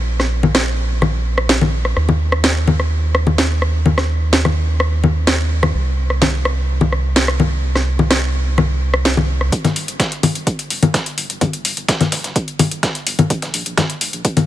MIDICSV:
0, 0, Header, 1, 3, 480
1, 0, Start_track
1, 0, Tempo, 472441
1, 76, Time_signature, 4, 2, 24, 8
1, 14695, End_track
2, 0, Start_track
2, 0, Title_t, "Analog synth bass"
2, 0, Program_c, 0, 38
2, 0, Note_on_c, 0, 34, 89
2, 1972, Note_off_c, 0, 34, 0
2, 1996, Note_on_c, 0, 39, 89
2, 5813, Note_off_c, 0, 39, 0
2, 5837, Note_on_c, 0, 36, 89
2, 9653, Note_off_c, 0, 36, 0
2, 9800, Note_on_c, 0, 31, 73
2, 9886, Note_off_c, 0, 31, 0
2, 9916, Note_on_c, 0, 31, 90
2, 10007, Note_off_c, 0, 31, 0
2, 10040, Note_on_c, 0, 31, 76
2, 10126, Note_off_c, 0, 31, 0
2, 10397, Note_on_c, 0, 29, 95
2, 10487, Note_off_c, 0, 29, 0
2, 10519, Note_on_c, 0, 31, 77
2, 10605, Note_off_c, 0, 31, 0
2, 10876, Note_on_c, 0, 31, 92
2, 10966, Note_off_c, 0, 31, 0
2, 11356, Note_on_c, 0, 31, 93
2, 11446, Note_off_c, 0, 31, 0
2, 11479, Note_on_c, 0, 31, 81
2, 11565, Note_off_c, 0, 31, 0
2, 11719, Note_on_c, 0, 31, 75
2, 11805, Note_off_c, 0, 31, 0
2, 11836, Note_on_c, 0, 31, 91
2, 11926, Note_off_c, 0, 31, 0
2, 11958, Note_on_c, 0, 31, 79
2, 12044, Note_off_c, 0, 31, 0
2, 12316, Note_on_c, 0, 29, 93
2, 12406, Note_off_c, 0, 29, 0
2, 12439, Note_on_c, 0, 31, 79
2, 12525, Note_off_c, 0, 31, 0
2, 12794, Note_on_c, 0, 31, 93
2, 12885, Note_off_c, 0, 31, 0
2, 12918, Note_on_c, 0, 31, 82
2, 13004, Note_off_c, 0, 31, 0
2, 13274, Note_on_c, 0, 31, 90
2, 13366, Note_off_c, 0, 31, 0
2, 13638, Note_on_c, 0, 34, 76
2, 13725, Note_off_c, 0, 34, 0
2, 13754, Note_on_c, 0, 34, 92
2, 13846, Note_off_c, 0, 34, 0
2, 13879, Note_on_c, 0, 34, 78
2, 13965, Note_off_c, 0, 34, 0
2, 14236, Note_on_c, 0, 29, 96
2, 14326, Note_off_c, 0, 29, 0
2, 14358, Note_on_c, 0, 34, 79
2, 14444, Note_off_c, 0, 34, 0
2, 14695, End_track
3, 0, Start_track
3, 0, Title_t, "Drums"
3, 200, Note_on_c, 9, 37, 50
3, 200, Note_on_c, 9, 38, 33
3, 301, Note_off_c, 9, 37, 0
3, 301, Note_off_c, 9, 38, 0
3, 439, Note_on_c, 9, 64, 84
3, 541, Note_off_c, 9, 64, 0
3, 556, Note_on_c, 9, 37, 75
3, 556, Note_on_c, 9, 38, 107
3, 658, Note_off_c, 9, 37, 0
3, 658, Note_off_c, 9, 38, 0
3, 1035, Note_on_c, 9, 37, 51
3, 1035, Note_on_c, 9, 64, 84
3, 1137, Note_off_c, 9, 37, 0
3, 1137, Note_off_c, 9, 64, 0
3, 1399, Note_on_c, 9, 37, 74
3, 1500, Note_off_c, 9, 37, 0
3, 1516, Note_on_c, 9, 38, 111
3, 1618, Note_off_c, 9, 38, 0
3, 1640, Note_on_c, 9, 64, 84
3, 1742, Note_off_c, 9, 64, 0
3, 1880, Note_on_c, 9, 37, 51
3, 1981, Note_off_c, 9, 37, 0
3, 1997, Note_on_c, 9, 37, 49
3, 2099, Note_off_c, 9, 37, 0
3, 2120, Note_on_c, 9, 64, 86
3, 2221, Note_off_c, 9, 64, 0
3, 2360, Note_on_c, 9, 37, 77
3, 2461, Note_off_c, 9, 37, 0
3, 2477, Note_on_c, 9, 38, 105
3, 2579, Note_off_c, 9, 38, 0
3, 2718, Note_on_c, 9, 64, 88
3, 2820, Note_off_c, 9, 64, 0
3, 2841, Note_on_c, 9, 37, 50
3, 2942, Note_off_c, 9, 37, 0
3, 3197, Note_on_c, 9, 37, 76
3, 3298, Note_off_c, 9, 37, 0
3, 3319, Note_on_c, 9, 64, 83
3, 3421, Note_off_c, 9, 64, 0
3, 3437, Note_on_c, 9, 38, 106
3, 3539, Note_off_c, 9, 38, 0
3, 3678, Note_on_c, 9, 37, 54
3, 3779, Note_off_c, 9, 37, 0
3, 3918, Note_on_c, 9, 64, 87
3, 4020, Note_off_c, 9, 64, 0
3, 4041, Note_on_c, 9, 37, 80
3, 4041, Note_on_c, 9, 38, 32
3, 4142, Note_off_c, 9, 37, 0
3, 4142, Note_off_c, 9, 38, 0
3, 4397, Note_on_c, 9, 38, 105
3, 4499, Note_off_c, 9, 38, 0
3, 4521, Note_on_c, 9, 37, 49
3, 4521, Note_on_c, 9, 64, 89
3, 4623, Note_off_c, 9, 37, 0
3, 4623, Note_off_c, 9, 64, 0
3, 4877, Note_on_c, 9, 37, 78
3, 4978, Note_off_c, 9, 37, 0
3, 5117, Note_on_c, 9, 64, 88
3, 5218, Note_off_c, 9, 64, 0
3, 5357, Note_on_c, 9, 37, 53
3, 5357, Note_on_c, 9, 38, 107
3, 5458, Note_off_c, 9, 37, 0
3, 5458, Note_off_c, 9, 38, 0
3, 5719, Note_on_c, 9, 37, 77
3, 5719, Note_on_c, 9, 64, 94
3, 5820, Note_off_c, 9, 37, 0
3, 5820, Note_off_c, 9, 64, 0
3, 6199, Note_on_c, 9, 37, 50
3, 6301, Note_off_c, 9, 37, 0
3, 6316, Note_on_c, 9, 38, 110
3, 6316, Note_on_c, 9, 64, 91
3, 6418, Note_off_c, 9, 38, 0
3, 6418, Note_off_c, 9, 64, 0
3, 6556, Note_on_c, 9, 37, 78
3, 6658, Note_off_c, 9, 37, 0
3, 6919, Note_on_c, 9, 64, 93
3, 7021, Note_off_c, 9, 64, 0
3, 7036, Note_on_c, 9, 37, 49
3, 7137, Note_off_c, 9, 37, 0
3, 7275, Note_on_c, 9, 38, 113
3, 7377, Note_off_c, 9, 38, 0
3, 7398, Note_on_c, 9, 37, 74
3, 7500, Note_off_c, 9, 37, 0
3, 7516, Note_on_c, 9, 64, 93
3, 7617, Note_off_c, 9, 64, 0
3, 7879, Note_on_c, 9, 37, 48
3, 7879, Note_on_c, 9, 38, 35
3, 7980, Note_off_c, 9, 37, 0
3, 7980, Note_off_c, 9, 38, 0
3, 8120, Note_on_c, 9, 64, 88
3, 8221, Note_off_c, 9, 64, 0
3, 8235, Note_on_c, 9, 37, 73
3, 8235, Note_on_c, 9, 38, 113
3, 8337, Note_off_c, 9, 37, 0
3, 8337, Note_off_c, 9, 38, 0
3, 8716, Note_on_c, 9, 37, 49
3, 8716, Note_on_c, 9, 64, 92
3, 8818, Note_off_c, 9, 37, 0
3, 8818, Note_off_c, 9, 64, 0
3, 9079, Note_on_c, 9, 37, 72
3, 9180, Note_off_c, 9, 37, 0
3, 9197, Note_on_c, 9, 38, 118
3, 9298, Note_off_c, 9, 38, 0
3, 9319, Note_on_c, 9, 64, 91
3, 9421, Note_off_c, 9, 64, 0
3, 9560, Note_on_c, 9, 37, 49
3, 9662, Note_off_c, 9, 37, 0
3, 9676, Note_on_c, 9, 36, 113
3, 9676, Note_on_c, 9, 42, 85
3, 9677, Note_off_c, 9, 42, 0
3, 9677, Note_on_c, 9, 42, 65
3, 9778, Note_off_c, 9, 36, 0
3, 9779, Note_off_c, 9, 42, 0
3, 9799, Note_on_c, 9, 38, 46
3, 9800, Note_on_c, 9, 42, 43
3, 9800, Note_on_c, 9, 64, 87
3, 9901, Note_off_c, 9, 38, 0
3, 9902, Note_off_c, 9, 42, 0
3, 9902, Note_off_c, 9, 64, 0
3, 9916, Note_on_c, 9, 42, 66
3, 9918, Note_on_c, 9, 46, 100
3, 10018, Note_off_c, 9, 42, 0
3, 10019, Note_off_c, 9, 46, 0
3, 10040, Note_on_c, 9, 42, 44
3, 10142, Note_off_c, 9, 42, 0
3, 10156, Note_on_c, 9, 36, 113
3, 10156, Note_on_c, 9, 38, 114
3, 10156, Note_on_c, 9, 42, 85
3, 10157, Note_off_c, 9, 42, 0
3, 10157, Note_on_c, 9, 42, 67
3, 10258, Note_off_c, 9, 36, 0
3, 10258, Note_off_c, 9, 38, 0
3, 10258, Note_off_c, 9, 42, 0
3, 10280, Note_on_c, 9, 42, 45
3, 10382, Note_off_c, 9, 42, 0
3, 10396, Note_on_c, 9, 42, 65
3, 10397, Note_on_c, 9, 46, 104
3, 10397, Note_on_c, 9, 64, 86
3, 10498, Note_off_c, 9, 42, 0
3, 10498, Note_off_c, 9, 46, 0
3, 10498, Note_off_c, 9, 64, 0
3, 10520, Note_on_c, 9, 42, 44
3, 10621, Note_off_c, 9, 42, 0
3, 10636, Note_on_c, 9, 36, 118
3, 10636, Note_on_c, 9, 42, 65
3, 10737, Note_off_c, 9, 36, 0
3, 10738, Note_off_c, 9, 42, 0
3, 10759, Note_on_c, 9, 42, 44
3, 10760, Note_off_c, 9, 42, 0
3, 10760, Note_on_c, 9, 42, 47
3, 10861, Note_off_c, 9, 42, 0
3, 10876, Note_on_c, 9, 42, 65
3, 10876, Note_on_c, 9, 46, 102
3, 10977, Note_off_c, 9, 46, 0
3, 10978, Note_off_c, 9, 42, 0
3, 10999, Note_on_c, 9, 42, 43
3, 10999, Note_on_c, 9, 64, 84
3, 11101, Note_off_c, 9, 42, 0
3, 11101, Note_off_c, 9, 64, 0
3, 11115, Note_on_c, 9, 36, 113
3, 11116, Note_on_c, 9, 42, 68
3, 11117, Note_off_c, 9, 42, 0
3, 11117, Note_on_c, 9, 38, 114
3, 11117, Note_on_c, 9, 42, 88
3, 11217, Note_off_c, 9, 36, 0
3, 11218, Note_off_c, 9, 38, 0
3, 11218, Note_off_c, 9, 42, 0
3, 11239, Note_on_c, 9, 42, 45
3, 11341, Note_off_c, 9, 42, 0
3, 11356, Note_on_c, 9, 46, 100
3, 11357, Note_on_c, 9, 42, 70
3, 11457, Note_off_c, 9, 46, 0
3, 11458, Note_off_c, 9, 42, 0
3, 11479, Note_on_c, 9, 42, 45
3, 11581, Note_off_c, 9, 42, 0
3, 11595, Note_on_c, 9, 36, 119
3, 11596, Note_on_c, 9, 42, 84
3, 11596, Note_on_c, 9, 64, 83
3, 11697, Note_off_c, 9, 36, 0
3, 11697, Note_off_c, 9, 64, 0
3, 11698, Note_off_c, 9, 42, 0
3, 11718, Note_on_c, 9, 42, 43
3, 11820, Note_off_c, 9, 42, 0
3, 11835, Note_on_c, 9, 46, 109
3, 11836, Note_on_c, 9, 42, 66
3, 11937, Note_off_c, 9, 46, 0
3, 11938, Note_off_c, 9, 42, 0
3, 11959, Note_on_c, 9, 42, 43
3, 12060, Note_off_c, 9, 42, 0
3, 12075, Note_on_c, 9, 36, 119
3, 12075, Note_on_c, 9, 38, 116
3, 12075, Note_on_c, 9, 42, 89
3, 12177, Note_off_c, 9, 36, 0
3, 12177, Note_off_c, 9, 38, 0
3, 12177, Note_off_c, 9, 42, 0
3, 12198, Note_on_c, 9, 38, 42
3, 12198, Note_on_c, 9, 42, 42
3, 12198, Note_on_c, 9, 64, 82
3, 12300, Note_off_c, 9, 38, 0
3, 12300, Note_off_c, 9, 42, 0
3, 12300, Note_off_c, 9, 64, 0
3, 12315, Note_on_c, 9, 38, 49
3, 12315, Note_on_c, 9, 42, 64
3, 12315, Note_on_c, 9, 46, 104
3, 12416, Note_off_c, 9, 38, 0
3, 12416, Note_off_c, 9, 42, 0
3, 12417, Note_off_c, 9, 46, 0
3, 12437, Note_on_c, 9, 38, 37
3, 12439, Note_on_c, 9, 42, 43
3, 12539, Note_off_c, 9, 38, 0
3, 12540, Note_off_c, 9, 42, 0
3, 12555, Note_on_c, 9, 36, 119
3, 12555, Note_on_c, 9, 42, 82
3, 12556, Note_off_c, 9, 42, 0
3, 12556, Note_on_c, 9, 42, 65
3, 12657, Note_off_c, 9, 36, 0
3, 12657, Note_off_c, 9, 42, 0
3, 12678, Note_on_c, 9, 42, 43
3, 12780, Note_off_c, 9, 42, 0
3, 12795, Note_on_c, 9, 42, 66
3, 12796, Note_on_c, 9, 46, 105
3, 12796, Note_on_c, 9, 64, 83
3, 12897, Note_off_c, 9, 42, 0
3, 12897, Note_off_c, 9, 46, 0
3, 12897, Note_off_c, 9, 64, 0
3, 12918, Note_on_c, 9, 42, 44
3, 13019, Note_off_c, 9, 42, 0
3, 13035, Note_on_c, 9, 36, 119
3, 13035, Note_on_c, 9, 38, 117
3, 13035, Note_on_c, 9, 42, 67
3, 13137, Note_off_c, 9, 36, 0
3, 13137, Note_off_c, 9, 38, 0
3, 13137, Note_off_c, 9, 42, 0
3, 13158, Note_on_c, 9, 42, 45
3, 13260, Note_off_c, 9, 42, 0
3, 13275, Note_on_c, 9, 42, 70
3, 13275, Note_on_c, 9, 46, 106
3, 13377, Note_off_c, 9, 42, 0
3, 13377, Note_off_c, 9, 46, 0
3, 13398, Note_on_c, 9, 42, 45
3, 13398, Note_on_c, 9, 64, 88
3, 13500, Note_off_c, 9, 42, 0
3, 13500, Note_off_c, 9, 64, 0
3, 13515, Note_on_c, 9, 36, 127
3, 13515, Note_on_c, 9, 42, 86
3, 13616, Note_off_c, 9, 42, 0
3, 13617, Note_off_c, 9, 36, 0
3, 13638, Note_on_c, 9, 38, 46
3, 13638, Note_on_c, 9, 42, 42
3, 13740, Note_off_c, 9, 38, 0
3, 13740, Note_off_c, 9, 42, 0
3, 13755, Note_on_c, 9, 42, 68
3, 13755, Note_on_c, 9, 46, 107
3, 13857, Note_off_c, 9, 42, 0
3, 13857, Note_off_c, 9, 46, 0
3, 13879, Note_on_c, 9, 42, 42
3, 13980, Note_off_c, 9, 42, 0
3, 13995, Note_on_c, 9, 36, 123
3, 13995, Note_on_c, 9, 38, 121
3, 13995, Note_on_c, 9, 42, 88
3, 13996, Note_off_c, 9, 42, 0
3, 13996, Note_on_c, 9, 42, 64
3, 13996, Note_on_c, 9, 64, 87
3, 14097, Note_off_c, 9, 36, 0
3, 14097, Note_off_c, 9, 38, 0
3, 14098, Note_off_c, 9, 42, 0
3, 14098, Note_off_c, 9, 64, 0
3, 14119, Note_on_c, 9, 42, 42
3, 14221, Note_off_c, 9, 42, 0
3, 14235, Note_on_c, 9, 42, 67
3, 14235, Note_on_c, 9, 46, 107
3, 14337, Note_off_c, 9, 42, 0
3, 14337, Note_off_c, 9, 46, 0
3, 14358, Note_on_c, 9, 42, 42
3, 14460, Note_off_c, 9, 42, 0
3, 14474, Note_on_c, 9, 42, 66
3, 14475, Note_off_c, 9, 42, 0
3, 14475, Note_on_c, 9, 36, 124
3, 14475, Note_on_c, 9, 42, 83
3, 14577, Note_off_c, 9, 36, 0
3, 14577, Note_off_c, 9, 42, 0
3, 14597, Note_on_c, 9, 42, 43
3, 14597, Note_on_c, 9, 64, 86
3, 14598, Note_off_c, 9, 42, 0
3, 14598, Note_on_c, 9, 42, 44
3, 14695, Note_off_c, 9, 42, 0
3, 14695, Note_off_c, 9, 64, 0
3, 14695, End_track
0, 0, End_of_file